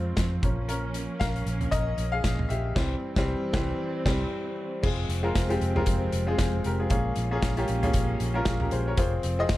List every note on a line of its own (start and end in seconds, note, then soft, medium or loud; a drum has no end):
0.00 0.12 F2 medium
0.00 0.42 F3 medium
0.00 2.72 F3 medium
0.00 0.41 G#3 medium
0.00 0.45 G#3 medium
0.00 0.41 C4 medium
0.00 0.45 C4 medium
0.00 0.43 C#4 medium
0.00 0.45 F4 medium
0.00 0.45 A#4 medium
0.00 0.46 C5 medium
0.17 0.38 F2 medium
0.17 kick medium
0.17 snare medium
0.17 closed hi-hat medium
0.42 1.07 A#1 medium
0.42 1.16 F3 medium
0.42 2.74 A#3 medium
0.42 1.17 A#3 soft
0.42 2.74 C#4 medium
0.42 0.68 C#4 medium
0.42 kick loud
0.42 closed hi-hat medium
0.68 1.17 C#4 medium
0.68 1.17 A#4 medium
0.68 closed hi-hat medium
0.94 closed hi-hat medium
1.20 1.42 A#1 loud
1.20 1.69 A#4 medium
1.20 1.74 F5 medium
1.20 kick loud
1.20 snare loud
1.20 closed hi-hat medium
1.36 closed hi-hat medium
1.46 1.68 A#1 medium
1.46 closed hi-hat medium
1.61 closed hi-hat soft
1.61 floor tom medium
1.71 1.94 A#1 medium
1.71 2.11 A#4 medium
1.71 2.14 D#5 loud
1.71 kick medium
1.71 closed hi-hat medium
1.98 2.19 A#1 medium
1.98 closed hi-hat medium
2.12 2.48 G#4 medium
2.12 2.47 F5 loud
2.24 2.46 A#1 medium
2.24 kick medium
2.24 snare medium
2.24 closed hi-hat medium
2.39 floor tom medium
2.49 2.71 A#1 medium
2.49 2.75 G4 medium
2.49 2.74 E5 medium
2.49 closed hi-hat medium
2.75 2.94 C2 loud
2.75 2.94 E3 medium
2.75 4.81 E3 medium
2.75 2.94 G3 medium
2.75 4.81 G3 medium
2.75 2.95 C4 medium
2.75 4.81 C4 medium
2.75 kick loud
2.75 snare loud
2.75 crash medium
3.16 3.34 C2 medium
3.16 3.34 E3 medium
3.16 3.34 G3 medium
3.16 3.34 C4 loud
3.16 kick loud
3.16 snare loud
3.53 3.72 C2 loud
3.53 3.72 E3 loud
3.53 3.72 G3 medium
3.53 3.72 C4 medium
3.53 kick loud
3.53 snare loud
4.05 4.24 C2 loud
4.05 4.24 E3 medium
4.05 4.24 G3 medium
4.05 4.24 C4 medium
4.05 kick loud
4.05 snare loud
4.05 crash medium
4.83 5.05 F1 medium
4.83 6.89 F3 medium
4.83 5.14 G#3 medium
4.83 8.94 G#3 medium
4.83 5.14 C4 medium
4.83 6.89 C4 medium
4.83 5.14 F4 medium
4.83 5.14 G#4 medium
4.83 kick loud
4.83 crash loud
5.09 5.30 F1 medium
5.09 closed hi-hat medium
5.23 5.43 G#3 medium
5.23 5.43 C4 medium
5.23 5.43 F4 medium
5.23 5.43 A#4 medium
5.35 5.57 F1 loud
5.35 kick loud
5.35 snare loud
5.35 closed hi-hat medium
5.49 5.69 G#3 medium
5.49 5.69 C4 medium
5.49 5.69 F4 medium
5.49 5.69 G4 loud
5.49 closed hi-hat medium
5.61 5.82 F1 medium
5.61 closed hi-hat medium
5.75 6.14 G#3 medium
5.75 6.14 C4 medium
5.75 6.14 F4 medium
5.75 6.15 A#4 medium
5.75 floor tom medium
5.86 6.08 F1 loud
5.86 kick medium
5.86 closed hi-hat medium
6.12 6.34 F1 medium
6.12 closed hi-hat medium
6.27 6.46 G#3 medium
6.27 6.46 C4 medium
6.27 6.39 F4 medium
6.27 6.38 G#4 medium
6.39 6.60 F1 medium
6.39 6.64 G#4 medium
6.39 6.63 C5 medium
6.39 kick loud
6.39 snare loud
6.39 closed hi-hat medium
6.64 6.86 F1 medium
6.64 6.79 G4 medium
6.64 6.79 A#4 medium
6.64 closed hi-hat medium
6.80 6.89 F4 medium
6.80 6.90 G#4 medium
6.90 7.12 A#1 medium
6.90 7.64 A#2 medium
6.90 7.21 A#3 medium
6.90 8.96 A#3 medium
6.90 7.21 C#4 medium
6.90 8.96 C#4 medium
6.90 7.21 F4 medium
6.90 7.21 G#4 medium
6.90 kick loud
6.90 closed hi-hat medium
7.16 7.38 A#1 loud
7.16 closed hi-hat medium
7.31 7.50 A#3 medium
7.31 7.51 C#4 medium
7.31 7.51 F4 medium
7.31 7.51 G#4 medium
7.42 7.64 A#1 loud
7.42 kick loud
7.42 snare loud
7.42 closed hi-hat loud
7.57 7.76 A#3 medium
7.57 7.76 C#4 medium
7.57 7.77 F4 medium
7.57 7.77 G4 medium
7.57 closed hi-hat medium
7.68 7.90 A#1 loud
7.68 closed hi-hat medium
7.83 8.21 A#3 medium
7.83 8.22 C#4 medium
7.83 8.22 F4 medium
7.83 8.22 G#4 medium
7.83 closed hi-hat soft
7.83 floor tom medium
7.94 8.16 A#1 loud
7.94 kick loud
7.94 closed hi-hat medium
8.20 8.42 A#1 medium
8.20 closed hi-hat medium
8.34 8.54 A#3 medium
8.34 8.54 C#4 medium
8.34 8.46 F4 medium
8.34 8.46 A#4 medium
8.45 8.67 A#1 medium
8.45 8.60 F4 medium
8.45 8.60 G#4 medium
8.45 kick loud
8.45 snare loud
8.45 closed hi-hat medium
8.60 8.72 G4 medium
8.60 8.72 A#4 medium
8.60 floor tom medium
8.71 8.93 A#1 medium
8.71 8.86 G#4 medium
8.71 8.86 C5 medium
8.71 closed hi-hat medium
8.88 9.12 A#4 medium
8.88 9.12 C#5 medium
8.97 9.19 F1 loud
8.97 9.57 F3 medium
8.97 9.57 G#3 medium
8.97 9.57 C4 medium
8.97 9.28 C4 medium
8.97 9.29 F4 medium
8.97 9.29 G#4 medium
8.97 9.29 C5 medium
8.97 kick loud
8.97 closed hi-hat medium
9.23 9.45 F1 loud
9.23 closed hi-hat medium
9.39 9.57 C4 medium
9.39 9.57 F4 medium
9.39 9.57 G#4 medium
9.39 9.57 D#5 loud
9.49 9.57 F1 loud
9.49 kick loud
9.49 snare loud
9.49 closed hi-hat medium